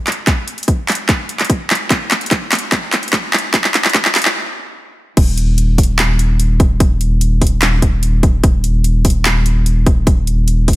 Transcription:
0.07 clap, closed hi-hat
0.12 closed hi-hat
0.27 kick, clap, closed hi-hat
0.48 closed hi-hat
0.58 closed hi-hat
0.63 closed hi-hat
0.68 kick, closed hi-hat
0.88 clap, closed hi-hat, open hi-hat
0.95 closed hi-hat
1.09 kick, clap, closed hi-hat
1.29 closed hi-hat
1.39 clap, closed hi-hat
1.45 closed hi-hat
1.50 kick, closed hi-hat
1.70 clap, closed hi-hat
1.75 closed hi-hat
1.90 kick, clap, closed hi-hat
2.11 clap, closed hi-hat
2.21 closed hi-hat
2.26 closed hi-hat
2.31 kick, clap, closed hi-hat
2.52 clap, closed hi-hat, open hi-hat
2.59 closed hi-hat
2.72 kick, clap, closed hi-hat
2.92 clap, closed hi-hat
3.03 closed hi-hat
3.08 closed hi-hat
3.13 kick, clap, closed hi-hat
3.33 clap, closed hi-hat
3.38 closed hi-hat
3.54 kick, clap, closed hi-hat
3.64 clap
3.74 clap, closed hi-hat
3.84 clap, closed hi-hat
3.89 closed hi-hat
3.94 kick, clap, closed hi-hat
4.05 clap
4.15 clap, closed hi-hat, open hi-hat
4.22 clap, closed hi-hat
5.17 D#1, kick, closed hi-hat, crash
5.37 closed hi-hat
5.58 closed hi-hat
5.78 kick, open hi-hat
5.83 closed hi-hat
5.99 clap, closed hi-hat
6.19 closed hi-hat
6.40 closed hi-hat
6.60 kick, closed hi-hat
6.80 kick, closed hi-hat
7.01 closed hi-hat
7.21 closed hi-hat
7.42 kick, open hi-hat
7.47 closed hi-hat
7.62 clap, closed hi-hat
7.82 kick, closed hi-hat
8.03 closed hi-hat
8.23 kick, closed hi-hat
8.44 D#1, kick, closed hi-hat
8.64 closed hi-hat
8.84 closed hi-hat
9.05 kick, open hi-hat
9.10 closed hi-hat
9.25 clap, closed hi-hat
9.46 closed hi-hat
9.66 closed hi-hat
9.86 kick, closed hi-hat
10.07 kick, closed hi-hat
10.27 closed hi-hat
10.48 closed hi-hat
10.68 kick, open hi-hat

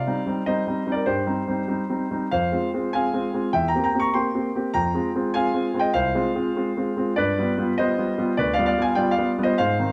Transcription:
Already playing: D5 F5
0.07 G3 C4 D#4
0.26 G3 C4 D#4
0.46 G3 C4 D#4 C5 D#5
0.67 G3 C4 D#4
0.87 G3 C4 D#4
0.92 A#4 D5
1.06 G2 G4 C5
1.26 G3 C4 D#4
1.47 G3 C4 D#4
1.68 G3 C4 D#4
1.89 G3 C4 D#4
2.11 G3 C4 D#4
2.31 F2 C5 F5
2.52 G#3 C4 F4
2.74 G#3 C4 F4
2.93 G#3 C4 F4 F5 G#5
3.14 G#3 C4 F4
3.34 G#3 C4 F4
3.53 E2 E5 G5
3.68 G5 A#5
3.74 A#3 C4 G4
3.84 G5 A#5
3.94 A#3 C4 G4
4.00 A#5 C#6
4.14 A#3 C4 G4 G5 C6
4.35 A#3 C4 G4
4.55 A#3 C4 G4
4.74 F2 G5 A#5
4.94 G#3 C4 F4
5.15 G#3 C4 F4
5.34 G#3 C4 F4 F5 G#5
5.54 G#3 C4 F4
5.74 G#3 C4 F4
5.79 D#5 G5
5.94 C2 C5 F5
6.14 G#3 C4 F4
6.35 G#3 C4 F4
6.56 G#3 C4 F4
6.77 G#3 C4 F4
6.97 G#3 C4 F4
7.16 G2 B4 D5
7.39 G3 B3 F4
7.58 G3 B3 F4
7.78 G3 B3 F4 C5 D#5
7.98 G3 B3 F4
8.18 G3 B3 F4
8.37 D2 B4 D5
8.54 D5 F5
8.58 G3 B3 F4
8.66 D5 F5
8.78 G3 B3 F4
8.82 F5 G#5
8.95 G3 B3 F4 D5 G5
9.11 D5 F5
9.18 G3 B3 F4
9.38 G3 B3 F4
9.43 C5 D#5
9.58 G#2 C5 F5
9.79 D#3 C4 D#4

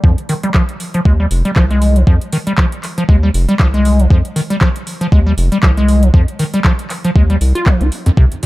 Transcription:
0.04 F2 F3, kick
0.18 closed hi-hat
0.29 D#3, open hi-hat
0.43 G3, closed hi-hat
0.54 F3, kick, clap
0.69 closed hi-hat
0.80 open hi-hat
0.94 F3, closed hi-hat
1.05 D#2 G#3, kick
1.20 G3
1.31 F1, open hi-hat
1.45 G3, closed hi-hat
1.56 C2 F3, kick, clap
1.71 G#3, closed hi-hat
1.82 open hi-hat
1.96 F3, closed hi-hat
2.07 F2 F3, kick
2.21 closed hi-hat
2.33 D#3, open hi-hat
2.47 G3, closed hi-hat
2.58 F3, kick, clap
2.72 closed hi-hat
2.83 clap, open hi-hat
2.98 F3, closed hi-hat
3.09 D#2 G#3, kick
3.23 G3
3.34 F1, open hi-hat
3.49 G3, closed hi-hat
3.60 C2 F3, kick, clap
3.74 G#3, closed hi-hat
3.85 open hi-hat
3.99 F3, closed hi-hat
4.10 F2 F3, kick
4.25 closed hi-hat
4.36 D#3, open hi-hat
4.50 G3, closed hi-hat
4.61 F3, kick, clap
4.76 closed hi-hat
4.87 open hi-hat
5.01 F3, closed hi-hat
5.12 D#2 G#3, kick
5.27 G3
5.38 F1, open hi-hat
5.52 G3, closed hi-hat
5.63 C2 F3, kick, clap
5.77 G#3, closed hi-hat
5.88 open hi-hat
6.03 F3, closed hi-hat
6.14 F2 F3, kick
6.28 closed hi-hat
6.39 D#3, open hi-hat
6.54 G3, closed hi-hat
6.65 F3, kick, clap
6.79 closed hi-hat
6.90 clap, open hi-hat
7.05 F3, closed hi-hat
7.16 D#2 G#3, kick
7.30 G3, closed hi-hat
7.41 C2, open hi-hat
7.55 F4, closed hi-hat
7.66 F3, kick, clap
7.81 C2 F4, closed hi-hat
7.92 open hi-hat
8.06 F2, closed hi-hat
8.17 C2 C3 A#3 D#4 G4 C5, kick
8.32 closed hi-hat
8.43 A#2, open hi-hat

